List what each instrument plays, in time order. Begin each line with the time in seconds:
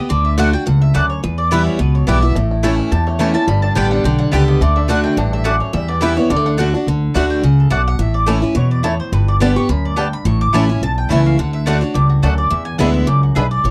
0.00 steel-string acoustic guitar B3
0.09 upright bass D2, steel-string acoustic guitar D3, mandolin D5
0.25 mandolin E5
0.38 steel-string acoustic guitar D3 A3 D4 F#4, mandolin A3 F#4 D5 F#5
0.53 steel-string acoustic guitar D4 F#4, mandolin G5
0.66 upright bass C#2, steel-string acoustic guitar G2, mandolin F#5
0.82 mandolin E5
0.94 upright bass D2, steel-string acoustic guitar F#2, mandolin A3 F#4 D5 F#5
1.10 mandolin C#5
1.23 steel-string acoustic guitar E2, upright bass E2, mandolin B4
1.38 mandolin D5
1.51 steel-string acoustic guitar E3 G3 B3 E4, mandolin B3 E4 B4 E5 G5
1.67 mandolin C#5
1.79 upright bass C#2, steel-string acoustic guitar B2, mandolin B4
1.95 mandolin C#5
2.07 upright bass B1, steel-string acoustic guitar E3 G3 B3 E4, mandolin B3 E4 B4 D5 G5
2.22 steel-string acoustic guitar B3 E4, mandolin E5
2.35 upright bass A1, steel-string acoustic guitar A2, five-string banjo A3
2.51 five-string banjo E4
2.63 steel-string acoustic guitar E3 A3 C#4 E4, mandolin A3 E4 C#5 A5, five-string banjo G4
2.79 five-string banjo E4
2.92 upright bass E2, steel-string acoustic guitar E2, five-string banjo G4, mandolin A5
3.07 five-string banjo A3, mandolin C#5
3.19 steel-string acoustic guitar E3 A3 C#4 E4, mandolin A3 E4 C#5 E5 A5, five-string banjo G4
3.34 five-string banjo C#4, steel-string acoustic guitar C#4 E4, mandolin A5
3.47 upright bass G1, steel-string acoustic guitar G2, five-string banjo G3, mandolin B5
3.62 five-string banjo D4, mandolin A5
3.75 upright bass A1, steel-string acoustic guitar D3 G3 B3 G4, mandolin B3 G4 D5 G5, five-string banjo G4
3.91 five-string banjo D4, mandolin F#5
4.04 upright bass B1, steel-string acoustic guitar D3, five-string banjo G4, mandolin G5
4.19 five-string banjo G3, mandolin F#5
4.31 upright bass C#2, steel-string acoustic guitar D3 G3 B3 G4, mandolin B3 G4 D5 E5 G5, five-string banjo G4
4.48 five-string banjo B3, mandolin D#5
4.61 upright bass D2, steel-string acoustic guitar D3, five-string banjo A3, mandolin D5
4.76 five-string banjo D4, mandolin E5
4.88 steel-string acoustic guitar D3 A3 D4 F#4, mandolin A3 F#4 D5 F#5, five-string banjo D4
5.04 five-string banjo A3, mandolin G5
5.17 upright bass A1, steel-string acoustic guitar G2, five-string banjo D4, mandolin F#5
5.33 five-string banjo A3, mandolin E5
5.44 steel-string acoustic guitar F#2, mandolin A3 F#4 D5 F#5, five-string banjo D4
5.60 five-string banjo A3, mandolin C#5
5.73 steel-string acoustic guitar E2, upright bass E2, five-string banjo G3, mandolin E5
5.88 five-string banjo B3, mandolin D5
6.01 steel-string acoustic guitar E3 G3 B3 E4, mandolin B3 E4 B4 E5 G5, five-string banjo E4
6.17 five-string banjo G3, steel-string acoustic guitar B3 E4, mandolin C#5
6.30 upright bass D2, steel-string acoustic guitar D3, five-string banjo G3, mandolin D5
6.36 five-string banjo A3
6.46 five-string banjo D4, mandolin F#5
6.57 steel-string acoustic guitar D3 A3 D4 F#4, mandolin A3 F#4 D5 F#5, five-string banjo D4
6.74 five-string banjo D4, steel-string acoustic guitar D4 F#4
6.87 upright bass D2, steel-string acoustic guitar D3
7.14 upright bass D2, steel-string acoustic guitar D3 A3 D4 F#4, mandolin A3 F#4 D5 F#5, five-string banjo A3 D4
7.30 mandolin G5
7.43 upright bass C#2, steel-string acoustic guitar C#3, mandolin F#5
7.60 mandolin A4
7.70 upright bass B1, steel-string acoustic guitar B2, mandolin A3 F#4 D5 F#5, five-string banjo A3 D4
7.88 mandolin F#5
7.99 upright bass A1, steel-string acoustic guitar A2, mandolin E5
8.14 mandolin D5
8.26 steel-string acoustic guitar E3 A3 C#4 E4, mandolin A3 E4 C#5 A5, five-string banjo A3 C#4 E4
8.42 steel-string acoustic guitar C#4 E4, mandolin B4
8.55 upright bass E2, steel-string acoustic guitar B2, mandolin C#5
8.71 mandolin D5
8.83 steel-string acoustic guitar A2, mandolin A3 E4 C#5 A5, five-string banjo A3 C#4 E4
9.00 mandolin C5
9.12 upright bass G1, steel-string acoustic guitar G2, mandolin B4
9.28 mandolin D5
9.40 steel-string acoustic guitar D3 G3 B3 G4, five-string banjo G3 B3 D4, mandolin B3 G4 D5 A5
9.56 steel-string acoustic guitar B3 G4, mandolin C#6
9.69 upright bass D2, steel-string acoustic guitar F#2, mandolin B5
9.85 mandolin D5
9.96 steel-string acoustic guitar G2, five-string banjo G3 B3 D4, mandolin B3 G4 D5 G5 A5
10.13 mandolin B5
10.25 upright bass A1, steel-string acoustic guitar A2, mandolin C#6
10.41 mandolin D6
10.53 upright bass A1, steel-string acoustic guitar E3 A3 C#4 E4, mandolin A3 E4 C#5 A5 B5, five-string banjo A3 C#4 E4
10.69 steel-string acoustic guitar C#4 E4, mandolin G#5
10.81 upright bass B1, steel-string acoustic guitar E2, mandolin A5
10.98 mandolin G5
11.09 upright bass C#2, steel-string acoustic guitar E3 A3 C#4 E4, mandolin A3 E4 C#5 F#5 A5, five-string banjo A3 C#4 E4
11.26 mandolin F5
11.38 upright bass D2, steel-string acoustic guitar D3, mandolin F#5
11.53 mandolin E5
11.66 steel-string acoustic guitar D3 A3 D4 F#4, mandolin A3 F#4 D5 F#5, five-string banjo A3 D4
11.81 steel-string acoustic guitar D4 F#4, mandolin C#5
11.94 upright bass C#2, steel-string acoustic guitar G2, mandolin D5
12.10 mandolin F#4
12.23 upright bass D2, steel-string acoustic guitar F#2, mandolin A3 F#4 A4 D5 F#5, five-string banjo A3 D4
12.38 mandolin D5
12.50 steel-string acoustic guitar E2, upright bass E2, mandolin E5
12.65 mandolin G#5
12.78 upright bass D2, steel-string acoustic guitar D3 G#3 B3 E4, five-string banjo G#3 B3 D4, mandolin D4 G#4 E5 F#5 B5
12.94 mandolin E5
13.07 upright bass C#2, steel-string acoustic guitar F#2, mandolin D5
13.23 mandolin F#4
13.35 upright bass B1, steel-string acoustic guitar G#2, five-string banjo G#3 B3 D4, mandolin D4 G#4 B4 E5 B5
13.51 mandolin D5
13.64 upright bass A1, steel-string acoustic guitar A2, mandolin C#5